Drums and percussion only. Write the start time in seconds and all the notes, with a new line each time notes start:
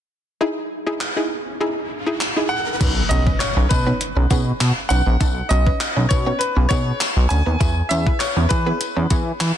1.01 clap
2.21 clap
2.81 kick, closed hi-hat, crash, tambourine
3.11 closed hi-hat
3.27 kick
3.41 clap, closed hi-hat, tambourine
3.71 kick, closed hi-hat, tambourine
4.01 closed hi-hat
4.30 kick, closed hi-hat, tambourine
4.60 clap, closed hi-hat, tambourine
4.90 closed hi-hat, tambourine
5.20 kick, closed hi-hat, tambourine
5.51 closed hi-hat
5.67 kick
5.80 clap, closed hi-hat, tambourine
6.10 kick, closed hi-hat, tambourine
6.41 closed hi-hat
6.70 kick, closed hi-hat, tambourine
7.00 clap, closed hi-hat, tambourine
7.30 closed hi-hat, tambourine
7.61 kick, closed hi-hat, tambourine
7.90 closed hi-hat, tambourine
8.07 kick
8.20 clap, closed hi-hat, tambourine
8.51 kick, closed hi-hat, tambourine
8.81 closed hi-hat, tambourine
9.10 kick, closed hi-hat, tambourine
9.40 clap, closed hi-hat, tambourine